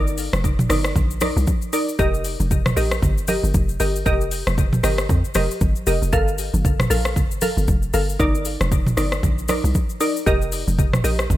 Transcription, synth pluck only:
0.00 0.64 D#4 medium
0.00 0.65 A#4 medium
0.00 0.65 D5 loud
0.70 0.94 D#4 medium
0.70 0.94 A#4 medium
0.70 0.94 D5 medium
1.21 1.33 D#4 medium
1.21 1.34 A#4 medium
1.21 1.34 D5 medium
1.73 1.85 D#4 medium
1.73 1.85 A#4 medium
1.73 1.85 D5 medium
1.99 2.71 G4 medium
1.99 2.72 A#4 medium
1.99 2.72 D#5 loud
2.76 3.01 G4 medium
2.76 3.01 A#4 medium
2.76 3.01 D#5 medium
3.28 3.40 G4 medium
3.28 3.40 A#4 medium
3.28 3.41 D#5 medium
3.80 3.92 G4 medium
3.80 3.92 A#4 medium
3.80 3.92 D#5 medium
4.06 4.78 G4 medium
4.06 4.78 A#4 medium
4.06 4.79 D#5 loud
4.83 5.08 G4 medium
4.83 5.08 A#4 medium
4.83 5.08 D#5 medium
5.35 5.47 G4 medium
5.35 5.47 A#4 medium
5.35 5.47 D#5 medium
5.87 5.99 G4 medium
5.87 5.99 A#4 medium
5.87 5.99 D#5 medium
6.13 6.85 A4 medium
6.13 6.85 A#4 medium
6.13 6.85 F5 loud
6.90 7.14 A4 medium
6.90 7.15 A#4 medium
6.90 7.15 F5 medium
7.42 7.54 A4 medium
7.42 7.54 A#4 medium
7.42 7.54 F5 medium
7.94 8.06 A4 medium
7.94 8.06 A#4 medium
7.94 8.06 F5 medium
8.20 8.92 D#4 loud
8.20 8.92 A#4 medium
8.20 8.92 D5 loud
8.97 9.21 D#4 medium
8.97 9.22 A#4 medium
8.97 9.22 D5 medium
9.49 9.61 D#4 medium
9.49 9.61 A#4 medium
9.49 9.61 D5 medium
10.01 10.13 D#4 medium
10.01 10.13 A#4 medium
10.01 10.13 D5 medium
10.26 10.99 G4 medium
10.26 10.99 A#4 medium
10.26 10.99 D#5 loud
11.04 11.28 G4 medium
11.04 11.28 A#4 medium
11.04 11.29 D#5 medium

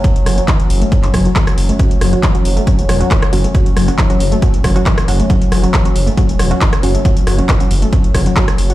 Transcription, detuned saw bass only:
0.26 0.40 F#1 medium
0.70 0.84 F#1 loud
1.03 1.10 F#1 medium
1.14 1.27 F#1 medium
1.57 1.71 F#1 loud
2.01 2.15 F#1 loud
2.45 2.59 F#1 medium
2.78 2.85 E1 medium
2.89 3.02 E1 medium
3.33 3.46 F#1 medium
3.76 3.90 F#1 loud
4.20 4.34 F#1 loud
4.54 4.60 F#1 medium
4.64 4.78 F#1 medium
5.08 5.22 F#1 loud
5.52 5.65 F#1 loud
5.95 6.09 F#1 medium
6.29 6.35 E1 medium
6.39 6.53 E1 loud
6.83 6.97 F#1 medium
7.27 7.41 F#1 loud
7.71 7.84 F#1 loud
8.04 8.10 F#1 medium
8.14 8.28 F#1 medium
8.58 8.72 F#1 loud

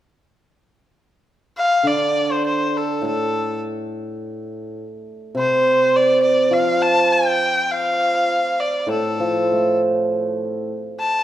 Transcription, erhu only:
1.57 1.89 F5 medium
1.87 2.33 D5 medium
2.32 2.45 C5 medium
2.46 2.67 C5 medium
2.67 2.78 C5 soft
2.77 3.05 A4 medium
3.06 3.59 A4 medium
5.38 5.97 C5 medium
5.96 6.22 D5 medium
6.23 6.55 D5 medium
6.53 6.83 F5 medium
6.82 7.14 A5 medium
7.12 7.72 G5 medium
7.71 8.61 F5 medium
8.60 8.89 D5 medium
8.91 9.76 A4 medium
10.99 11.23 A5 medium

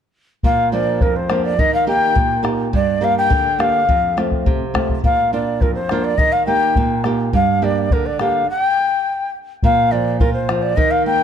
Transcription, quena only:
0.44 0.71 F5 medium
0.72 1.03 D5 medium
1.01 1.17 A#4 medium
1.15 1.43 C5 medium
1.44 1.60 D5 medium
1.59 1.73 D#5 medium
1.74 1.87 F5 medium
1.88 2.41 G5 medium
2.75 3.05 D5 medium
3.03 3.17 F5 medium
3.17 3.61 G5 medium
3.60 4.17 F5 medium
5.04 5.30 F5 medium
5.32 5.62 D5 medium
5.61 5.74 A#4 medium
5.74 6.05 C5 medium
6.04 6.19 D5 medium
6.17 6.33 D#5 medium
6.32 6.45 F5 medium
6.46 7.00 G5 medium
7.34 7.65 F5 medium
7.63 7.94 D5 medium
7.92 8.07 A#4 medium
8.05 8.19 D5 medium
8.20 8.46 F5 medium
8.49 8.61 F#5 loud
8.61 9.31 G5 loud
9.64 9.92 F5 medium
9.91 10.19 D5 medium
10.19 10.32 A#4 medium
10.33 10.63 C5 medium
10.62 10.77 D5 medium
10.76 10.92 D#5 medium
10.90 11.05 F5 medium
11.06 11.23 G5 loud

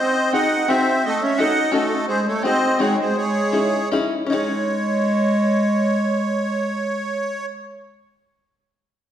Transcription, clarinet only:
0.00 0.32 C4 medium
0.34 0.67 D#4 medium
0.69 1.02 C4 medium
1.06 1.22 A3 medium
1.23 1.38 C#4 medium
1.41 1.73 D#4 medium
1.74 2.06 A3 medium
2.09 2.25 G#3 medium
2.29 2.44 A3 medium
2.46 2.78 C4 medium
2.80 2.97 G#3 medium
2.98 3.14 G#3 medium
3.15 3.88 G#3 medium
4.33 7.47 G#3 medium

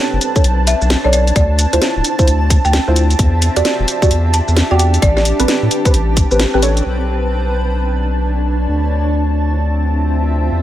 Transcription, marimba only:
0.67 0.85 E5 medium
1.04 1.10 D5 medium
1.13 1.22 D5 medium
1.36 1.54 D5 medium
2.65 3.25 G5 medium
4.34 4.51 A5 medium
4.71 4.76 G5 medium
4.79 4.89 G5 medium
5.02 5.12 D5 medium
5.17 5.22 D5 medium

